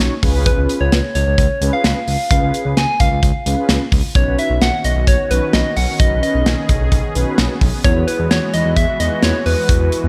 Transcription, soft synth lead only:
0.46 B4
0.81 C#5
1.15 C#5
1.73 F5
2.31 F5
2.77 G#5
3.00 F5
4.16 C#5
4.39 E5
4.62 F#5
4.85 D#5
5.08 C#5
5.31 B4
5.54 D#5
5.77 F#5
5.99 D#5
6.23 D#5
7.84 C#5
8.07 B4
8.31 C#5
8.54 D#5
8.77 E5
9.00 D#5
9.23 C#5
9.46 B4

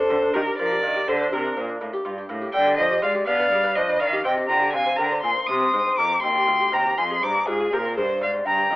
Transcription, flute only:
Already playing: A4
0.35 G4
0.59 A#4
1.08 A4
1.31 G4
2.55 D5
2.79 C5
3.03 D5
3.27 D5
3.77 C5
4.01 D5
4.26 D#5
4.50 G5
4.74 F5
5.00 G5
5.25 G#5
5.49 C6
5.98 A#5
6.24 G5
6.74 G5
6.98 G#5
7.24 A#5
7.48 F4
7.72 G4
7.96 G#4
8.21 D5
8.46 G5

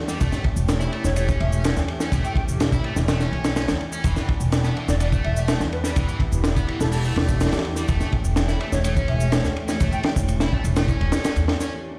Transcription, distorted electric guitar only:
0.08 G3
0.20 A3
0.32 A3
0.80 E4
0.93 A3
1.16 A3
1.29 C#4
2.01 C#4
2.12 A3
2.25 A3
2.73 E4
2.85 A3
3.08 A3
3.21 C#4
3.92 C#4
4.04 E3
4.16 E3
4.64 B3
4.76 E3
5.01 E3
5.12 A3
5.84 G3
5.96 E3
6.08 E3
6.56 B3
6.68 E3
6.92 E3
7.05 A3
7.76 G3
7.88 A3
8.00 A3
8.48 E4
8.60 A3
8.85 A3
8.96 C#4
9.69 C#4
9.81 A3
9.92 A3
10.41 E4
10.53 A3
10.77 A3
10.89 C#4
11.61 C#4

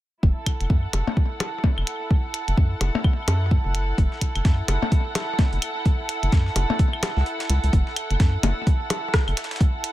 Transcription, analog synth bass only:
0.23 F#1
0.61 F#1
0.70 F#2
0.93 F#1
1.78 F#1
2.48 F#1
2.57 F#2
2.81 F#1
3.28 F#2
3.65 F#1
3.98 F#1
4.36 F#1
4.45 F#2
4.68 F#1
5.53 F#1
6.23 F#1
6.32 F#2
6.56 F#1
7.17 C#2
7.50 C#2
7.64 C#2
7.73 F#1
8.11 F#1
8.20 F#2
8.43 F#1
9.28 F#1

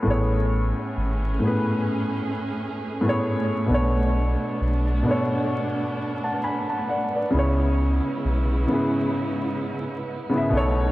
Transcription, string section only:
0.06 A3 C#4 G#4
3.69 B3 D4
7.33 C#3 G#3 E4
10.52 A3 D#4

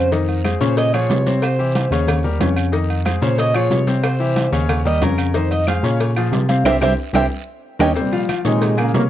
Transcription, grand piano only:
0.12 D#3 D#4 D#5
0.44 G#3 G#4 C5
0.61 C#3 C#4 C#5
0.93 F3 F4 G#4
1.26 C3 C4 C5
1.59 E3 E4 G4
1.92 C#3 C#4 C#5
2.24 G3 G4 A#4
2.40 C#3 C#4 C#5
2.72 D#3 D#4 D#5
3.06 G#3 G#4 C5
3.22 C#3 C#4 C#5
3.55 F3 F4 G#4
3.87 C3 C4 C5
4.20 E3 E4 G4
4.52 C#3 C#4 C#5
4.85 G3 G4 A#4
5.02 C#3 C#4 C#5
5.35 D#3 D#4 D#5
5.68 G#3 G#4 C5
5.84 C#3 C#4 C#5
6.17 F3 F4 G#4
6.49 C3 C4 C5
6.66 C4 E4 G4
6.81 C4 E4 G4
7.13 C4 E4 G4
7.79 C#4 D#4 G4
7.95 C3 C4 C5
8.12 F3 F4 F5
8.45 D#3 D#4 C#5
8.77 G#3 G#4 G#5
8.94 C#3 C#4 C#5

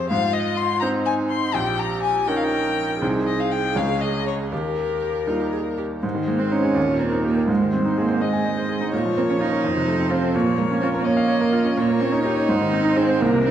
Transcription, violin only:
0.10 F5
0.34 D#5
0.57 C6
0.80 A#5
1.06 G#5
1.29 C6
1.55 G5
1.79 A#5
2.03 G#5
2.28 G5
2.36 F5
2.43 G5
3.27 D#5
3.40 F5
3.52 G5
3.77 F5
4.01 D#5
4.27 C#5
4.53 A#4
6.04 C5
6.77 A#4
7.49 C5
8.22 D#5
8.93 C#5
9.64 C5
10.35 C#5
11.04 D#5
11.77 C#5
12.48 C5
13.21 A#4

